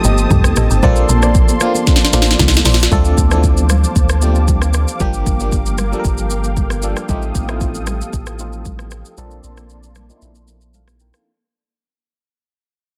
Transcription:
Already playing: F3 A3 C4 D#4 G4 A4 C5 A5 D#6
0.04 G1 G4 A4 D#5, high conga, shaker
0.18 shaker
0.31 C2 G4, kick, mid tom, low conga, shaker
0.44 cross-stick, high conga, shaker
0.56 A1 C4 G4 A4 D#5, cross-stick, shaker
0.70 G1 G4, shaker
0.83 A#1 F3 A#3 C4 D4 A4 C5 D5 C6, kick, low conga, shaker
0.96 shaker
1.09 A#1, high conga, shaker
1.22 A4 C5 D5, cross-stick, shaker
1.35 kick, shaker
1.49 high conga, shaker
1.61 F3 A#3 C4 D4 F4, cross-stick, shaker
1.75 high conga, shaker
1.87 kick, snare, shaker
1.96 snare
2.00 shaker
2.05 snare
2.13 A1 F3 A#3 C4 D4 F4 A4 C5 D5, snare, high conga, shaker
2.22 snare
2.27 shaker
2.31 snare
2.39 C2, kick, snare, low conga, shaker
2.48 snare
2.53 high conga, shaker
2.57 snare
2.65 A#1 A4 C5 D5, snare, open hi-hat, shaker
2.74 snare
2.79 snare, shaker
2.92 D2 F3 A3 C4 D4 A4 C5 F5 A5 D6, kick, low conga, shaker
3.05 shaker
3.18 D2, kick, high conga, shaker
3.31 E3 A3 C4 D4 A4, cross-stick, shaker
3.38 F3
3.44 kick, shaker
3.57 high conga, shaker
3.70 cross-stick, low conga, shaker
3.83 high conga, shaker
3.96 D2, kick, shaker
4.09 cross-stick, shaker
4.22 F3 A3 C4 D4 G4, high conga, shaker
4.35 shaker
4.48 kick, low conga, shaker
4.61 cross-stick, high conga, shaker
4.74 cross-stick, shaker
4.88 shaker
5.00 G1 F3 G3 A#3 D4 G4 A#4 G5, kick, low conga, shaker
5.14 shaker
5.26 G1, kick, high conga, shaker
5.40 F3 G3 A#3 D4 G4, shaker
5.52 kick, shaker
5.66 high conga, shaker
5.78 cross-stick, low conga, shaker
5.92 F3 G3 A#3 D4 A4, high conga, shaker
5.99 A#4
6.05 G1, kick, shaker
6.18 shaker
6.30 high conga, shaker
6.44 shaker
6.57 kick, low conga, shaker
6.70 cross-stick, high conga, shaker
6.83 F3 G3 A#3 D4 A4, shaker
6.97 cross-stick, shaker
7.09 A1 F3 A3 C4 D#4 G4 A4 D#6, kick, low conga, shaker
7.22 shaker
7.35 A1, kick, high conga, shaker
7.49 F3 A3 C4 D#4 E4, cross-stick, shaker
7.56 F4
7.61 kick, shaker
7.75 high conga, shaker
7.87 cross-stick, low conga, shaker
8.01 high conga, shaker
8.13 A1, kick, shaker
8.26 cross-stick, shaker
8.39 F3 A3 C4 D#4 F4, high conga, shaker
8.53 shaker
8.65 kick, low conga, shaker
8.79 cross-stick, high conga, shaker
8.91 cross-stick, shaker
9.05 shaker
9.18 A#1 F3 A#3 C4 D4 A4 D5 A5 C6, low conga, shaker
9.31 shaker
9.44 A#1, high conga, shaker
9.57 F3 A#3 C4 D4 A4, cross-stick, shaker
9.70 shaker
9.83 high conga, shaker
9.96 cross-stick, low conga, shaker
10.09 F3 A#3 C4 D4 D#4, high conga, shaker
10.17 E4
10.22 A#1, shaker
10.35 shaker
10.48 high conga, shaker
10.61 shaker
10.74 A4 F5, low conga, shaker
10.87 cross-stick, high conga, shaker
11.00 A#4 G5, shaker
11.14 A4 F5, cross-stick, shaker

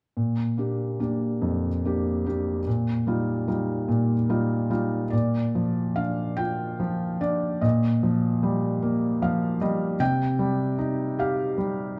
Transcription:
0.17 A#2
0.58 A#3 D4 G4
1.00 A#3 D4 G4
1.42 F2
1.85 A#3 D4 G4
2.26 A#3 D4 G4
2.67 A#2
3.07 G3 D#4 F4
3.48 G3 D#4 F4
3.88 A#2
4.29 G3 D#4 F4
4.70 G3 D#4 F4
5.10 A#2 D5
5.55 F3
5.96 D4 F5
6.37 F4 G5
6.80 F3
7.21 D4 D5
7.61 A#2 D#5
8.03 F3
8.43 G3
8.82 A#3
9.22 F3 F5
9.61 G3 D#5
10.00 C3 G5
10.39 G3
10.78 D#4
11.19 G4 F5
11.58 G3

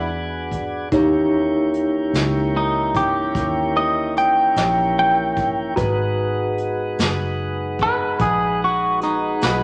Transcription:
Already playing: E2 B3 D4 F#4 G#4 D5
0.52 kick, closed hi-hat
0.92 D#2 E3 A#3 C#4 D#4 G4 C#5, kick, closed hi-hat
1.74 closed hi-hat
2.13 C#2, snare, closed hi-hat
2.57 D#4
2.95 G4, kick, closed hi-hat
3.35 D#2, kick, closed hi-hat
3.77 D#5
4.17 G5, closed hi-hat
4.56 A#1, snare, closed hi-hat
4.99 G5
5.36 kick, closed hi-hat
5.76 G#1 G#3 B3 D#4 F#4 B4 A#5, kick, closed hi-hat
6.58 closed hi-hat
6.98 F#1, snare, closed hi-hat
7.79 B4, kick, closed hi-hat
8.19 A#1 G#4, kick, closed hi-hat
8.64 F#4
9.01 D#4, snare, closed hi-hat
9.41 B1 B4, snare, closed hi-hat

